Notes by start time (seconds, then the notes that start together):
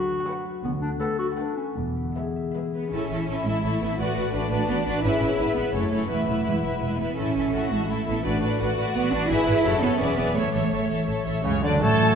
Already playing: D3 F#3 F#4 B4 F#5
0.09 F#4
0.26 F#3 B4 F#5
0.46 F#4
0.64 D2 D3 B3
0.81 A3 D4
0.99 A3 A4 B4 F#5
1.19 F#4 A4
1.37 A3 D4 B4 F#5
1.57 C#4 F#4
1.76 E1 E2 E3 B3
1.96 E4
2.16 G#3 G#4 B4 E5
2.36 E5
2.54 G#3 G#4 B4 E5
2.75 B3 B4
2.92 A1 A2 C#4 E4 A4 E5
3.10 A1 E3 E4 A4 E5
3.28 A1 A3 E4 A4 E5
3.45 A1 G#3 E4 A4 E5
3.64 A1 A3 E4 A4 C#5 E5
3.81 A1 B3 E4 A4 E5
3.99 A1 A2 A3 F#4 B4 D5
4.17 A1 A3 F#4 B4 D5
4.34 A1 A3 B3 D4 F#4 B4 D5
4.51 A1 D4 F#4 B4 D5
4.68 A1 B3 F#4 B4 D5
4.86 A1 D4 F#4 B4 D5
5.03 G#1 G#2 C#4 E4 B4 E5
5.21 G#1 G#3 E4 B4 E5
5.38 G#1 B3 E4 B4 E5
5.56 G#1 B3 E4 B4 E5
5.74 F#1 F#2 A3 C#4 E4 A4 C#5
5.91 F#1 E4 A4 C#5
6.09 E1 E2 A3 E4 B4 E5
6.27 E1 B2 E4 B4 E5
6.45 E1 G#3 B3 E4 B4 E5
6.64 E1 E4 B4 E5
6.82 E1 G#3 E4 B4 E5
7.00 E1 B3 E4 B4 E5
7.17 A1 A2 C#4 E4 A4 E5
7.36 A1 E3 E4 A4 E5
7.53 A1 C#4 E4 F#4 A4 E5
7.71 A1 G#3 E4 A4 E5
7.89 A1 A3 E4 A4 E5
8.07 A1 B3 E4 A4 E5
8.25 A1 A2 A3 D4 F#4 B4 D5
8.42 A1 A3 F#4 B4 D5
8.60 A1 A3 B3 F#4 B4 D5
8.77 A1 F#4 B4 D5
8.95 A1 B3 F#4 B4 D5
9.12 A1 D4 F#4 B4 D5
9.30 G#1 G#2 E4 G#4 B4 E5
9.46 G#1 E4 B4 E5
9.64 F#1 F#2 F#4 A4 C#5
9.82 F#1 B3 C#4 F#4 A4 C#5
10.00 E1 E2 C#4 G#4 B4 D5 E5
10.18 E1 B3 E4 G#4 D5 E5
10.35 A1 A2 A3 A4 C#5 E5
10.54 A1 E3 A4 C#5 E5
10.71 A1 A3 A4 C#5 E5
10.89 A1 E4 A4 C#5 E5
11.08 A1 A4 C#5 E5
11.25 A1 E4 A4 C#5 E5
11.44 C#2 F#2 C#3 C#4 C#5
11.62 D2 D3 F#3 D4 D5
11.82 A1 A2 A3 A4 C#5 A5
12.01 F#4